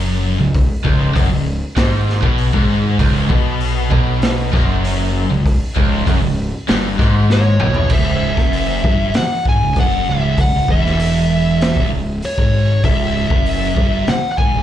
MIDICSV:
0, 0, Header, 1, 7, 480
1, 0, Start_track
1, 0, Key_signature, 4, "minor"
1, 0, Tempo, 614754
1, 434, Time_signature, 4, 2, 24, 8
1, 11422, End_track
2, 0, Start_track
2, 0, Title_t, "Lead electric guitar"
2, 0, Program_c, 0, 29
2, 5718, Note_on_c, 0, 73, 86
2, 6192, Note_off_c, 0, 73, 0
2, 6195, Note_on_c, 0, 76, 81
2, 7153, Note_on_c, 0, 78, 106
2, 7180, Note_off_c, 0, 76, 0
2, 7374, Note_off_c, 0, 78, 0
2, 7407, Note_on_c, 0, 80, 102
2, 7644, Note_off_c, 0, 80, 0
2, 7653, Note_on_c, 0, 78, 94
2, 7881, Note_on_c, 0, 76, 85
2, 7888, Note_off_c, 0, 78, 0
2, 8122, Note_off_c, 0, 76, 0
2, 8123, Note_on_c, 0, 78, 82
2, 8340, Note_off_c, 0, 78, 0
2, 8366, Note_on_c, 0, 76, 86
2, 9289, Note_off_c, 0, 76, 0
2, 9566, Note_on_c, 0, 73, 78
2, 10028, Note_off_c, 0, 73, 0
2, 10031, Note_on_c, 0, 76, 83
2, 11004, Note_on_c, 0, 78, 104
2, 11025, Note_off_c, 0, 76, 0
2, 11170, Note_off_c, 0, 78, 0
2, 11180, Note_on_c, 0, 78, 79
2, 11227, Note_off_c, 0, 78, 0
2, 11230, Note_on_c, 0, 80, 104
2, 11422, Note_off_c, 0, 80, 0
2, 11422, End_track
3, 0, Start_track
3, 0, Title_t, "Distorted electric guitar"
3, 0, Program_c, 1, 30
3, 0, Note_on_c, 1, 42, 98
3, 306, Note_off_c, 1, 42, 0
3, 314, Note_on_c, 1, 37, 72
3, 506, Note_off_c, 1, 37, 0
3, 667, Note_on_c, 1, 37, 111
3, 902, Note_off_c, 1, 37, 0
3, 913, Note_on_c, 1, 42, 101
3, 1025, Note_off_c, 1, 42, 0
3, 1035, Note_on_c, 1, 37, 78
3, 1225, Note_off_c, 1, 37, 0
3, 1385, Note_on_c, 1, 44, 101
3, 1739, Note_off_c, 1, 44, 0
3, 1742, Note_on_c, 1, 47, 91
3, 1978, Note_off_c, 1, 47, 0
3, 1982, Note_on_c, 1, 44, 87
3, 2338, Note_off_c, 1, 44, 0
3, 2341, Note_on_c, 1, 37, 106
3, 2581, Note_off_c, 1, 37, 0
3, 2581, Note_on_c, 1, 47, 103
3, 3051, Note_off_c, 1, 47, 0
3, 3060, Note_on_c, 1, 47, 108
3, 3535, Note_off_c, 1, 47, 0
3, 3547, Note_on_c, 1, 42, 108
3, 4138, Note_off_c, 1, 42, 0
3, 4144, Note_on_c, 1, 37, 71
3, 4336, Note_off_c, 1, 37, 0
3, 4505, Note_on_c, 1, 37, 107
3, 4738, Note_off_c, 1, 37, 0
3, 4747, Note_on_c, 1, 42, 108
3, 4859, Note_off_c, 1, 42, 0
3, 4865, Note_on_c, 1, 37, 74
3, 5057, Note_off_c, 1, 37, 0
3, 5225, Note_on_c, 1, 43, 105
3, 5458, Note_off_c, 1, 43, 0
3, 5464, Note_on_c, 1, 44, 100
3, 5938, Note_off_c, 1, 44, 0
3, 5941, Note_on_c, 1, 47, 101
3, 6176, Note_off_c, 1, 47, 0
3, 6180, Note_on_c, 1, 37, 97
3, 6536, Note_off_c, 1, 37, 0
3, 6548, Note_on_c, 1, 42, 94
3, 6900, Note_off_c, 1, 42, 0
3, 6910, Note_on_c, 1, 43, 95
3, 7141, Note_off_c, 1, 43, 0
3, 7396, Note_on_c, 1, 44, 107
3, 7504, Note_off_c, 1, 44, 0
3, 7517, Note_on_c, 1, 37, 74
3, 7633, Note_off_c, 1, 37, 0
3, 7638, Note_on_c, 1, 42, 103
3, 7866, Note_off_c, 1, 42, 0
3, 7881, Note_on_c, 1, 37, 89
3, 8108, Note_off_c, 1, 37, 0
3, 8117, Note_on_c, 1, 37, 69
3, 8233, Note_off_c, 1, 37, 0
3, 8242, Note_on_c, 1, 37, 64
3, 8356, Note_off_c, 1, 37, 0
3, 8365, Note_on_c, 1, 40, 100
3, 9193, Note_off_c, 1, 40, 0
3, 9199, Note_on_c, 1, 37, 92
3, 9304, Note_off_c, 1, 37, 0
3, 9314, Note_on_c, 1, 37, 70
3, 9506, Note_off_c, 1, 37, 0
3, 9675, Note_on_c, 1, 44, 101
3, 10027, Note_off_c, 1, 44, 0
3, 10030, Note_on_c, 1, 37, 98
3, 10386, Note_off_c, 1, 37, 0
3, 10394, Note_on_c, 1, 42, 98
3, 10748, Note_off_c, 1, 42, 0
3, 10752, Note_on_c, 1, 43, 92
3, 10988, Note_off_c, 1, 43, 0
3, 11237, Note_on_c, 1, 44, 102
3, 11351, Note_off_c, 1, 44, 0
3, 11356, Note_on_c, 1, 37, 75
3, 11422, Note_off_c, 1, 37, 0
3, 11422, End_track
4, 0, Start_track
4, 0, Title_t, "Fingered electric bass"
4, 0, Program_c, 2, 33
4, 0, Note_on_c, 2, 30, 81
4, 281, Note_off_c, 2, 30, 0
4, 312, Note_on_c, 2, 25, 74
4, 535, Note_off_c, 2, 25, 0
4, 664, Note_on_c, 2, 25, 99
4, 891, Note_off_c, 2, 25, 0
4, 902, Note_on_c, 2, 30, 91
4, 1018, Note_off_c, 2, 30, 0
4, 1026, Note_on_c, 2, 25, 89
4, 1252, Note_off_c, 2, 25, 0
4, 1380, Note_on_c, 2, 32, 99
4, 1719, Note_off_c, 2, 32, 0
4, 1736, Note_on_c, 2, 35, 90
4, 1965, Note_off_c, 2, 35, 0
4, 1978, Note_on_c, 2, 32, 95
4, 2317, Note_off_c, 2, 32, 0
4, 2338, Note_on_c, 2, 25, 94
4, 2565, Note_off_c, 2, 25, 0
4, 2580, Note_on_c, 2, 35, 96
4, 3032, Note_off_c, 2, 35, 0
4, 3056, Note_on_c, 2, 35, 101
4, 3509, Note_off_c, 2, 35, 0
4, 3538, Note_on_c, 2, 30, 94
4, 4110, Note_off_c, 2, 30, 0
4, 4139, Note_on_c, 2, 25, 80
4, 4365, Note_off_c, 2, 25, 0
4, 4496, Note_on_c, 2, 25, 92
4, 4723, Note_off_c, 2, 25, 0
4, 4736, Note_on_c, 2, 30, 89
4, 4852, Note_off_c, 2, 30, 0
4, 4861, Note_on_c, 2, 25, 80
4, 5086, Note_off_c, 2, 25, 0
4, 5226, Note_on_c, 2, 31, 105
4, 5449, Note_off_c, 2, 31, 0
4, 5462, Note_on_c, 2, 32, 83
4, 5912, Note_off_c, 2, 32, 0
4, 5952, Note_on_c, 2, 35, 82
4, 6172, Note_off_c, 2, 35, 0
4, 6177, Note_on_c, 2, 25, 95
4, 6516, Note_off_c, 2, 25, 0
4, 6534, Note_on_c, 2, 30, 89
4, 6875, Note_off_c, 2, 30, 0
4, 6903, Note_on_c, 2, 31, 89
4, 7128, Note_off_c, 2, 31, 0
4, 7384, Note_on_c, 2, 32, 80
4, 7497, Note_off_c, 2, 32, 0
4, 7501, Note_on_c, 2, 25, 81
4, 7616, Note_off_c, 2, 25, 0
4, 7622, Note_on_c, 2, 30, 92
4, 7848, Note_off_c, 2, 30, 0
4, 7865, Note_on_c, 2, 25, 83
4, 8091, Note_off_c, 2, 25, 0
4, 8104, Note_on_c, 2, 25, 80
4, 8218, Note_off_c, 2, 25, 0
4, 8228, Note_on_c, 2, 25, 78
4, 8341, Note_off_c, 2, 25, 0
4, 8345, Note_on_c, 2, 28, 87
4, 9158, Note_off_c, 2, 28, 0
4, 9180, Note_on_c, 2, 25, 100
4, 9295, Note_off_c, 2, 25, 0
4, 9300, Note_on_c, 2, 25, 73
4, 9530, Note_off_c, 2, 25, 0
4, 9666, Note_on_c, 2, 32, 101
4, 10005, Note_off_c, 2, 32, 0
4, 10023, Note_on_c, 2, 25, 107
4, 10364, Note_off_c, 2, 25, 0
4, 10387, Note_on_c, 2, 30, 96
4, 10727, Note_off_c, 2, 30, 0
4, 10752, Note_on_c, 2, 31, 95
4, 10978, Note_off_c, 2, 31, 0
4, 11228, Note_on_c, 2, 32, 82
4, 11345, Note_off_c, 2, 32, 0
4, 11353, Note_on_c, 2, 25, 76
4, 11422, Note_off_c, 2, 25, 0
4, 11422, End_track
5, 0, Start_track
5, 0, Title_t, "Muted distorted electric guitar strokes"
5, 7160, Note_on_c, 9, 29, 54
5, 7238, Note_off_c, 9, 29, 0
5, 10991, Note_on_c, 9, 29, 59
5, 11069, Note_off_c, 9, 29, 0
5, 11422, End_track
6, 0, Start_track
6, 0, Title_t, "Muted fingered electric bass strokes"
6, 7139, Note_on_c, 9, 29, 41
6, 7217, Note_off_c, 9, 29, 0
6, 10997, Note_on_c, 9, 29, 45
6, 11075, Note_off_c, 9, 29, 0
6, 11422, End_track
7, 0, Start_track
7, 0, Title_t, "Drums"
7, 426, Note_on_c, 9, 36, 119
7, 430, Note_on_c, 9, 46, 65
7, 504, Note_off_c, 9, 36, 0
7, 509, Note_off_c, 9, 46, 0
7, 663, Note_on_c, 9, 36, 101
7, 741, Note_off_c, 9, 36, 0
7, 903, Note_on_c, 9, 36, 107
7, 906, Note_on_c, 9, 46, 59
7, 981, Note_off_c, 9, 36, 0
7, 984, Note_off_c, 9, 46, 0
7, 1379, Note_on_c, 9, 46, 60
7, 1381, Note_on_c, 9, 36, 120
7, 1387, Note_on_c, 9, 38, 115
7, 1457, Note_off_c, 9, 46, 0
7, 1459, Note_off_c, 9, 36, 0
7, 1465, Note_off_c, 9, 38, 0
7, 1632, Note_on_c, 9, 38, 35
7, 1710, Note_off_c, 9, 38, 0
7, 1739, Note_on_c, 9, 36, 113
7, 1817, Note_off_c, 9, 36, 0
7, 1857, Note_on_c, 9, 46, 57
7, 1935, Note_off_c, 9, 46, 0
7, 1978, Note_on_c, 9, 36, 110
7, 2057, Note_off_c, 9, 36, 0
7, 2337, Note_on_c, 9, 36, 113
7, 2338, Note_on_c, 9, 46, 68
7, 2415, Note_off_c, 9, 36, 0
7, 2416, Note_off_c, 9, 46, 0
7, 2576, Note_on_c, 9, 36, 103
7, 2655, Note_off_c, 9, 36, 0
7, 2813, Note_on_c, 9, 46, 54
7, 2892, Note_off_c, 9, 46, 0
7, 3056, Note_on_c, 9, 36, 116
7, 3134, Note_off_c, 9, 36, 0
7, 3294, Note_on_c, 9, 46, 61
7, 3303, Note_on_c, 9, 38, 111
7, 3372, Note_off_c, 9, 46, 0
7, 3381, Note_off_c, 9, 38, 0
7, 3539, Note_on_c, 9, 36, 115
7, 3550, Note_on_c, 9, 38, 34
7, 3617, Note_off_c, 9, 36, 0
7, 3628, Note_off_c, 9, 38, 0
7, 3783, Note_on_c, 9, 46, 63
7, 3861, Note_off_c, 9, 46, 0
7, 4260, Note_on_c, 9, 36, 104
7, 4266, Note_on_c, 9, 46, 68
7, 4338, Note_off_c, 9, 36, 0
7, 4344, Note_off_c, 9, 46, 0
7, 4500, Note_on_c, 9, 36, 104
7, 4578, Note_off_c, 9, 36, 0
7, 4740, Note_on_c, 9, 36, 110
7, 4741, Note_on_c, 9, 46, 66
7, 4818, Note_off_c, 9, 36, 0
7, 4820, Note_off_c, 9, 46, 0
7, 5216, Note_on_c, 9, 46, 60
7, 5224, Note_on_c, 9, 38, 107
7, 5294, Note_off_c, 9, 46, 0
7, 5302, Note_off_c, 9, 38, 0
7, 5459, Note_on_c, 9, 36, 103
7, 5463, Note_on_c, 9, 38, 35
7, 5537, Note_off_c, 9, 36, 0
7, 5541, Note_off_c, 9, 38, 0
7, 5699, Note_on_c, 9, 38, 66
7, 5777, Note_off_c, 9, 38, 0
7, 5932, Note_on_c, 9, 45, 96
7, 6010, Note_off_c, 9, 45, 0
7, 6047, Note_on_c, 9, 43, 90
7, 6125, Note_off_c, 9, 43, 0
7, 6164, Note_on_c, 9, 49, 126
7, 6175, Note_on_c, 9, 36, 117
7, 6242, Note_off_c, 9, 49, 0
7, 6253, Note_off_c, 9, 36, 0
7, 6538, Note_on_c, 9, 36, 104
7, 6542, Note_on_c, 9, 38, 35
7, 6616, Note_off_c, 9, 36, 0
7, 6621, Note_off_c, 9, 38, 0
7, 6659, Note_on_c, 9, 46, 59
7, 6737, Note_off_c, 9, 46, 0
7, 6902, Note_on_c, 9, 36, 95
7, 6980, Note_off_c, 9, 36, 0
7, 7137, Note_on_c, 9, 46, 60
7, 7145, Note_on_c, 9, 38, 121
7, 7215, Note_off_c, 9, 46, 0
7, 7223, Note_off_c, 9, 38, 0
7, 7382, Note_on_c, 9, 36, 105
7, 7460, Note_off_c, 9, 36, 0
7, 7620, Note_on_c, 9, 46, 61
7, 7622, Note_on_c, 9, 36, 104
7, 7698, Note_off_c, 9, 46, 0
7, 7700, Note_off_c, 9, 36, 0
7, 8101, Note_on_c, 9, 46, 69
7, 8102, Note_on_c, 9, 36, 100
7, 8180, Note_off_c, 9, 36, 0
7, 8180, Note_off_c, 9, 46, 0
7, 8342, Note_on_c, 9, 36, 103
7, 8420, Note_off_c, 9, 36, 0
7, 8475, Note_on_c, 9, 38, 36
7, 8554, Note_off_c, 9, 38, 0
7, 8586, Note_on_c, 9, 46, 64
7, 8664, Note_off_c, 9, 46, 0
7, 9067, Note_on_c, 9, 46, 67
7, 9076, Note_on_c, 9, 38, 119
7, 9146, Note_off_c, 9, 46, 0
7, 9154, Note_off_c, 9, 38, 0
7, 9184, Note_on_c, 9, 36, 96
7, 9262, Note_off_c, 9, 36, 0
7, 9544, Note_on_c, 9, 46, 59
7, 9622, Note_off_c, 9, 46, 0
7, 9665, Note_on_c, 9, 36, 103
7, 9743, Note_off_c, 9, 36, 0
7, 10023, Note_on_c, 9, 46, 55
7, 10025, Note_on_c, 9, 36, 114
7, 10101, Note_off_c, 9, 46, 0
7, 10103, Note_off_c, 9, 36, 0
7, 10388, Note_on_c, 9, 36, 116
7, 10466, Note_off_c, 9, 36, 0
7, 10509, Note_on_c, 9, 46, 62
7, 10587, Note_off_c, 9, 46, 0
7, 10748, Note_on_c, 9, 36, 107
7, 10826, Note_off_c, 9, 36, 0
7, 10986, Note_on_c, 9, 46, 56
7, 10994, Note_on_c, 9, 38, 122
7, 11064, Note_off_c, 9, 46, 0
7, 11072, Note_off_c, 9, 38, 0
7, 11229, Note_on_c, 9, 36, 108
7, 11307, Note_off_c, 9, 36, 0
7, 11422, End_track
0, 0, End_of_file